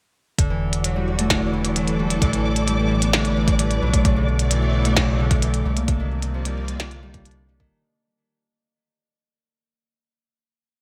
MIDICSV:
0, 0, Header, 1, 6, 480
1, 0, Start_track
1, 0, Key_signature, 1, "minor"
1, 0, Tempo, 458015
1, 405, Time_signature, 4, 2, 24, 8
1, 11336, End_track
2, 0, Start_track
2, 0, Title_t, "Synth texture"
2, 0, Program_c, 0, 99
2, 406, Note_on_c, 0, 74, 86
2, 8095, Note_off_c, 0, 74, 0
2, 11336, End_track
3, 0, Start_track
3, 0, Title_t, "String machine"
3, 0, Program_c, 1, 50
3, 403, Note_on_c, 1, 52, 84
3, 496, Note_on_c, 1, 66, 73
3, 1268, Note_on_c, 1, 69, 71
3, 2323, Note_on_c, 1, 45, 89
3, 2325, Note_off_c, 1, 66, 0
3, 2996, Note_off_c, 1, 69, 0
3, 3083, Note_on_c, 1, 71, 87
3, 4004, Note_off_c, 1, 45, 0
3, 4004, Note_off_c, 1, 52, 0
3, 4005, Note_on_c, 1, 47, 92
3, 4195, Note_on_c, 1, 57, 80
3, 4245, Note_on_c, 1, 74, 87
3, 4425, Note_on_c, 1, 64, 78
3, 4774, Note_off_c, 1, 71, 0
3, 5924, Note_off_c, 1, 64, 0
3, 5924, Note_off_c, 1, 74, 0
3, 5925, Note_off_c, 1, 47, 0
3, 5926, Note_off_c, 1, 57, 0
3, 5927, Note_on_c, 1, 48, 85
3, 6263, Note_on_c, 1, 58, 76
3, 6389, Note_on_c, 1, 74, 93
3, 6402, Note_on_c, 1, 65, 82
3, 8084, Note_off_c, 1, 65, 0
3, 8085, Note_off_c, 1, 58, 0
3, 8085, Note_off_c, 1, 74, 0
3, 8086, Note_off_c, 1, 48, 0
3, 11336, End_track
4, 0, Start_track
4, 0, Title_t, "Harp"
4, 0, Program_c, 2, 46
4, 404, Note_on_c, 2, 50, 76
4, 525, Note_on_c, 2, 52, 70
4, 885, Note_on_c, 2, 54, 79
4, 1005, Note_on_c, 2, 55, 71
4, 1246, Note_on_c, 2, 57, 71
4, 1352, Note_off_c, 2, 50, 0
4, 1364, Note_on_c, 2, 50, 75
4, 1417, Note_off_c, 2, 52, 0
4, 1417, Note_off_c, 2, 54, 0
4, 1417, Note_off_c, 2, 55, 0
4, 1606, Note_on_c, 2, 52, 74
4, 1845, Note_on_c, 2, 54, 73
4, 2085, Note_on_c, 2, 55, 69
4, 2201, Note_off_c, 2, 57, 0
4, 2205, Note_on_c, 2, 57, 67
4, 2313, Note_off_c, 2, 50, 0
4, 2326, Note_on_c, 2, 50, 78
4, 2377, Note_off_c, 2, 52, 0
4, 2377, Note_off_c, 2, 54, 0
4, 2377, Note_off_c, 2, 55, 0
4, 2445, Note_on_c, 2, 52, 70
4, 2806, Note_on_c, 2, 55, 82
4, 2921, Note_off_c, 2, 57, 0
4, 2925, Note_on_c, 2, 57, 71
4, 3164, Note_on_c, 2, 59, 74
4, 3272, Note_off_c, 2, 50, 0
4, 3285, Note_on_c, 2, 50, 77
4, 3337, Note_off_c, 2, 52, 0
4, 3337, Note_off_c, 2, 55, 0
4, 3526, Note_on_c, 2, 52, 75
4, 3765, Note_on_c, 2, 55, 80
4, 4005, Note_on_c, 2, 54, 71
4, 4057, Note_off_c, 2, 50, 0
4, 4057, Note_off_c, 2, 52, 0
4, 4057, Note_off_c, 2, 55, 0
4, 4120, Note_off_c, 2, 57, 0
4, 4124, Note_on_c, 2, 57, 71
4, 4245, Note_on_c, 2, 49, 78
4, 4297, Note_off_c, 2, 54, 0
4, 4364, Note_on_c, 2, 50, 70
4, 4417, Note_off_c, 2, 49, 0
4, 4724, Note_on_c, 2, 52, 83
4, 4843, Note_on_c, 2, 54, 73
4, 5080, Note_off_c, 2, 57, 0
4, 5084, Note_on_c, 2, 57, 71
4, 5205, Note_on_c, 2, 49, 74
4, 5257, Note_off_c, 2, 50, 0
4, 5257, Note_off_c, 2, 52, 0
4, 5257, Note_off_c, 2, 54, 0
4, 5445, Note_on_c, 2, 50, 77
4, 5497, Note_off_c, 2, 49, 0
4, 5684, Note_on_c, 2, 52, 78
4, 5925, Note_on_c, 2, 55, 73
4, 5977, Note_off_c, 2, 50, 0
4, 5977, Note_off_c, 2, 52, 0
4, 6045, Note_on_c, 2, 58, 71
4, 6108, Note_off_c, 2, 57, 0
4, 6108, Note_off_c, 2, 59, 0
4, 6165, Note_on_c, 2, 50, 77
4, 6217, Note_off_c, 2, 55, 0
4, 6285, Note_on_c, 2, 51, 76
4, 6337, Note_off_c, 2, 50, 0
4, 6645, Note_on_c, 2, 53, 82
4, 6765, Note_on_c, 2, 55, 72
4, 7000, Note_off_c, 2, 58, 0
4, 7005, Note_on_c, 2, 58, 74
4, 7125, Note_on_c, 2, 50, 77
4, 7177, Note_off_c, 2, 51, 0
4, 7177, Note_off_c, 2, 53, 0
4, 7177, Note_off_c, 2, 55, 0
4, 7365, Note_on_c, 2, 55, 97
4, 7604, Note_on_c, 2, 62, 76
4, 7832, Note_off_c, 2, 55, 0
4, 7844, Note_on_c, 2, 55, 70
4, 7965, Note_on_c, 2, 51, 94
4, 8017, Note_off_c, 2, 50, 0
4, 8017, Note_off_c, 2, 55, 0
4, 8028, Note_off_c, 2, 62, 0
4, 8137, Note_off_c, 2, 51, 0
4, 10374, Note_off_c, 2, 58, 0
4, 11336, End_track
5, 0, Start_track
5, 0, Title_t, "Analog synth bass"
5, 0, Program_c, 3, 38
5, 403, Note_on_c, 3, 28, 83
5, 2300, Note_off_c, 3, 28, 0
5, 2323, Note_on_c, 3, 33, 86
5, 3980, Note_off_c, 3, 33, 0
5, 4005, Note_on_c, 3, 35, 85
5, 5901, Note_off_c, 3, 35, 0
5, 5924, Note_on_c, 3, 36, 88
5, 8060, Note_off_c, 3, 36, 0
5, 11336, End_track
6, 0, Start_track
6, 0, Title_t, "Drums"
6, 403, Note_on_c, 9, 36, 109
6, 404, Note_on_c, 9, 42, 63
6, 508, Note_off_c, 9, 36, 0
6, 509, Note_off_c, 9, 42, 0
6, 764, Note_on_c, 9, 42, 54
6, 868, Note_off_c, 9, 42, 0
6, 884, Note_on_c, 9, 42, 63
6, 989, Note_off_c, 9, 42, 0
6, 1245, Note_on_c, 9, 42, 52
6, 1349, Note_off_c, 9, 42, 0
6, 1363, Note_on_c, 9, 36, 100
6, 1364, Note_on_c, 9, 38, 106
6, 1364, Note_on_c, 9, 42, 63
6, 1468, Note_off_c, 9, 36, 0
6, 1469, Note_off_c, 9, 38, 0
6, 1469, Note_off_c, 9, 42, 0
6, 1725, Note_on_c, 9, 42, 53
6, 1830, Note_off_c, 9, 42, 0
6, 1845, Note_on_c, 9, 42, 65
6, 1950, Note_off_c, 9, 42, 0
6, 1965, Note_on_c, 9, 42, 35
6, 2070, Note_off_c, 9, 42, 0
6, 2205, Note_on_c, 9, 42, 52
6, 2310, Note_off_c, 9, 42, 0
6, 2324, Note_on_c, 9, 36, 117
6, 2325, Note_on_c, 9, 42, 62
6, 2428, Note_off_c, 9, 36, 0
6, 2430, Note_off_c, 9, 42, 0
6, 2445, Note_on_c, 9, 42, 36
6, 2550, Note_off_c, 9, 42, 0
6, 2685, Note_on_c, 9, 42, 52
6, 2790, Note_off_c, 9, 42, 0
6, 2804, Note_on_c, 9, 42, 61
6, 2909, Note_off_c, 9, 42, 0
6, 3165, Note_on_c, 9, 42, 53
6, 3270, Note_off_c, 9, 42, 0
6, 3285, Note_on_c, 9, 38, 116
6, 3285, Note_on_c, 9, 42, 63
6, 3390, Note_off_c, 9, 38, 0
6, 3390, Note_off_c, 9, 42, 0
6, 3405, Note_on_c, 9, 42, 36
6, 3510, Note_off_c, 9, 42, 0
6, 3644, Note_on_c, 9, 36, 114
6, 3644, Note_on_c, 9, 42, 52
6, 3748, Note_off_c, 9, 36, 0
6, 3749, Note_off_c, 9, 42, 0
6, 3764, Note_on_c, 9, 42, 64
6, 3869, Note_off_c, 9, 42, 0
6, 3884, Note_on_c, 9, 42, 35
6, 3989, Note_off_c, 9, 42, 0
6, 4124, Note_on_c, 9, 36, 103
6, 4125, Note_on_c, 9, 42, 52
6, 4229, Note_off_c, 9, 36, 0
6, 4230, Note_off_c, 9, 42, 0
6, 4244, Note_on_c, 9, 36, 117
6, 4245, Note_on_c, 9, 42, 60
6, 4349, Note_off_c, 9, 36, 0
6, 4349, Note_off_c, 9, 42, 0
6, 4604, Note_on_c, 9, 42, 53
6, 4709, Note_off_c, 9, 42, 0
6, 4724, Note_on_c, 9, 42, 64
6, 4829, Note_off_c, 9, 42, 0
6, 5084, Note_on_c, 9, 42, 51
6, 5189, Note_off_c, 9, 42, 0
6, 5204, Note_on_c, 9, 36, 103
6, 5204, Note_on_c, 9, 38, 115
6, 5204, Note_on_c, 9, 42, 65
6, 5309, Note_off_c, 9, 36, 0
6, 5309, Note_off_c, 9, 38, 0
6, 5309, Note_off_c, 9, 42, 0
6, 5563, Note_on_c, 9, 42, 52
6, 5564, Note_on_c, 9, 36, 120
6, 5668, Note_off_c, 9, 42, 0
6, 5669, Note_off_c, 9, 36, 0
6, 5684, Note_on_c, 9, 42, 65
6, 5789, Note_off_c, 9, 42, 0
6, 5804, Note_on_c, 9, 42, 34
6, 5909, Note_off_c, 9, 42, 0
6, 6043, Note_on_c, 9, 42, 53
6, 6148, Note_off_c, 9, 42, 0
6, 6163, Note_on_c, 9, 42, 60
6, 6164, Note_on_c, 9, 36, 122
6, 6268, Note_off_c, 9, 42, 0
6, 6269, Note_off_c, 9, 36, 0
6, 6523, Note_on_c, 9, 42, 51
6, 6628, Note_off_c, 9, 42, 0
6, 6763, Note_on_c, 9, 42, 64
6, 6868, Note_off_c, 9, 42, 0
6, 7003, Note_on_c, 9, 42, 50
6, 7108, Note_off_c, 9, 42, 0
6, 7124, Note_on_c, 9, 38, 121
6, 7124, Note_on_c, 9, 42, 61
6, 7229, Note_off_c, 9, 38, 0
6, 7229, Note_off_c, 9, 42, 0
6, 7243, Note_on_c, 9, 42, 36
6, 7348, Note_off_c, 9, 42, 0
6, 7484, Note_on_c, 9, 36, 117
6, 7484, Note_on_c, 9, 42, 51
6, 7588, Note_off_c, 9, 42, 0
6, 7589, Note_off_c, 9, 36, 0
6, 7603, Note_on_c, 9, 42, 61
6, 7664, Note_off_c, 9, 42, 0
6, 7664, Note_on_c, 9, 42, 34
6, 7768, Note_off_c, 9, 42, 0
6, 7964, Note_on_c, 9, 36, 102
6, 8069, Note_off_c, 9, 36, 0
6, 11336, End_track
0, 0, End_of_file